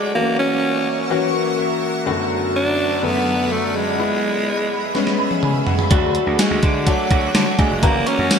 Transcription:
Already playing: G#3 A3 D4 F#4 A4 D5 F#5 D6
0.15 E3 F#3 A3 A#3 C#4 F#4 A#4 E5 C#6
0.21 A#3
0.39 C#4
1.10 E3 F#3 A#3 C#4 F#4
1.59 E5
2.06 F#2 D3 F#3 A3 B3 F#4 A4 D5 B5
2.56 D4
3.02 F#2 D3 F#3 A3 B3 F#4
3.52 A3
3.76 G#3
3.98 G#3 B3 E4 G#4 B4 E5
4.94 G#3 B3 C#4, snare
5.07 snare
5.19 B5
5.31 high tom
5.43 G#5, mid tom
5.67 F#5, floor tom
5.79 floor tom
5.90 D2 F#3 A3 D4 F#4 D5 F#5 D6, kick, closed hi-hat
6.15 A3, closed hi-hat
6.27 D2
6.39 G#3 F#4 G#5, snare, closed hi-hat, tambourine
6.51 D2
6.63 D3 D4, kick, closed hi-hat
6.86 F#3 A3 D4 F#4 F#5, kick, closed hi-hat
7.11 D2 F#4, kick, closed hi-hat
7.35 D3 D4, snare, closed hi-hat, tambourine
7.59 D2 G#3 A3 G#5, kick, closed hi-hat
7.70 F1
7.82 F#1 E3 F#3 A#3 C#4 F#4 A#4 E5 A#5 C#6, kick, closed hi-hat
8.06 A#3 C#4 C#6, closed hi-hat
8.19 F#2
8.31 F#4, snare, closed hi-hat, tambourine

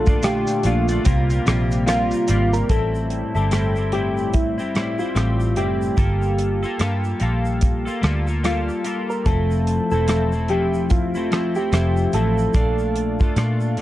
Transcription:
Already playing: A#1 A#2 D3 A3 F4 A4
0.06 A3 D4 F4, kick, shaker
0.23 A#2 A3 D4 F4 G4, cross-stick, closed hi-hat, shaker
0.47 shaker
0.63 A#1 A#2 A3 D4 F4, closed hi-hat, shaker
0.88 A3 D4 F4, shaker
1.05 C2 C3 G3 A#3 F4, kick, closed hi-hat, shaker
1.30 G3 A#3 F4, shaker
1.46 A#1 C3 G3 A#3 F4, cross-stick, closed hi-hat, shaker
1.71 shaker
1.87 C3 G3 A#3 F4, cross-stick, closed hi-hat, shaker
2.11 shaker
2.13 shaker
2.28 G#1 C3 G3, closed hi-hat, shaker
2.29 A#3 F4, shaker
2.53 A#4, shaker
2.69 A1 A2 G3 C4 E4 A4, kick, closed hi-hat, shaker
2.95 shaker
3.10 closed hi-hat
3.35 G1 G3 C4 E4 A4, shaker
3.51 A2 G3 C4 E4, cross-stick, closed hi-hat, shaker
3.76 G3 C4 E4, shaker
3.92 A2 G3 C4 E4 G4, closed hi-hat
4.17 shaker
4.34 E4, kick, closed hi-hat, shaker
4.58 G3 C4 E4, shaker
4.75 A2 G3 C4 E4, cross-stick, closed hi-hat
4.99 G3 C4 E4 F4, shaker
5.15 A1 A2 G3 C4, cross-stick, closed hi-hat, shaker
5.40 shaker
5.56 F#1 A2 G3 C4 E4 G4, closed hi-hat, shaker
5.82 shaker
5.97 G1 G3 A#3 F4 A4, kick, closed hi-hat, shaker
6.22 shaker
6.38 closed hi-hat
6.63 A#3 F4 A4, shaker
6.79 G2 G3 A#3 F4 A4, cross-stick, closed hi-hat, shaker
7.04 shaker
7.20 A#1 G3 A#3 F4 A4, closed hi-hat
7.45 shaker
7.61 kick, closed hi-hat, shaker
7.85 A#3 F4 A4, shaker
8.02 D2 G3 A#3 F4 A4, cross-stick, closed hi-hat
8.27 A#3 F4 A4, shaker
8.44 G3 A#3 F4 A4, cross-stick, closed hi-hat, shaker
8.69 shaker
8.84 G3 A#3 F4 A4, closed hi-hat, shaker
9.10 A#4, shaker
9.26 F1 F3 A3 C4 E4 A4, kick, closed hi-hat, shaker
9.51 shaker
9.67 closed hi-hat
9.91 E1 A3 C4 E4 A4, shaker
10.08 F3 A3 C4 E4, cross-stick, closed hi-hat, shaker
10.32 A3 C4 E4, shaker
10.48 F3 A3 C4 E4 G4, closed hi-hat
10.74 shaker
10.90 F4, kick, closed hi-hat, shaker
11.15 A3 C4 E4, shaker
11.31 F3 A3 C4 E4, cross-stick, closed hi-hat
11.55 A3 C4 E4 G4, shaker
11.72 F1 F3 A3 C4 E4, cross-stick, closed hi-hat, shaker
11.97 shaker
12.13 A1 F3 A3 C4 E4 A4, closed hi-hat, shaker
12.38 shaker
12.54 A#1 A#2 A3 D4 F4, kick, closed hi-hat, shaker
12.79 shaker
12.96 closed hi-hat
13.20 A3 D4 F4, kick, shaker
13.36 A#2 A3 D4 F4, cross-stick, closed hi-hat, shaker
13.60 shaker
13.77 D2 A#2 A3, closed hi-hat

